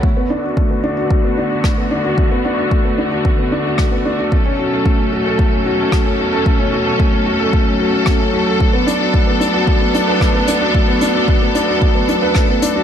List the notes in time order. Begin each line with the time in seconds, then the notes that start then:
0.03 D3 A3 B3 F#4, kick
0.17 B3
0.30 D4
0.44 F#4
0.57 A3, kick
0.70 B3
0.84 D4
0.97 F#4
1.10 A3, kick
1.24 B3
1.37 D4
1.51 F#4
1.64 A3, kick, cross-stick
1.78 B3
1.91 D4
2.04 F#4
2.18 A3, kick
2.31 B3
2.45 D4
2.58 F#4
2.71 A3, kick
2.85 B3
2.98 D4
3.12 F#4
3.25 A3, kick
3.39 B3
3.52 D4
3.65 F#4
3.78 A3, kick, cross-stick
3.92 B3
4.05 D4
4.19 F#4
4.32 B2 F#3 A3 C#4 A4, kick
4.46 C#4
4.59 F#4
4.72 A4
4.86 A3, kick
4.99 C#4
5.13 F#4
5.26 A4
5.39 A3, kick
5.53 C#4
5.66 F#4
5.79 A4
5.92 A3, kick, cross-stick
6.06 C#4
6.19 F#4
6.33 A4
6.46 A3, kick
6.59 C#4
6.73 F#4
6.86 A4
7.00 A3, kick
7.13 C#4
7.26 F#4
7.40 A4
7.53 A3, kick
7.66 C#4
7.80 F#4
7.93 A4
8.06 A3, kick, cross-stick
8.20 C#4
8.33 F#4
8.47 A4
8.60 B3 D4, kick
8.73 B3
8.87 D4, closed hi-hat
9.00 F#4
9.14 A3, kick
9.27 B3
9.41 D4, closed hi-hat
9.54 F#4
9.67 A3, kick
9.81 B3
9.94 D4, closed hi-hat
10.08 B4
10.21 A3, kick, cross-stick
10.35 B3
10.48 D4, closed hi-hat
10.61 F#4
10.75 A3, kick
10.88 B3
11.01 D4, closed hi-hat
11.15 F#4
11.28 A3, kick
11.42 B3
11.55 D4, closed hi-hat
11.68 F#4
11.82 A3, kick
11.95 B3
12.09 D4, closed hi-hat
12.22 B4
12.35 A3, kick, cross-stick
12.49 B3
12.62 D4, closed hi-hat
12.76 F#4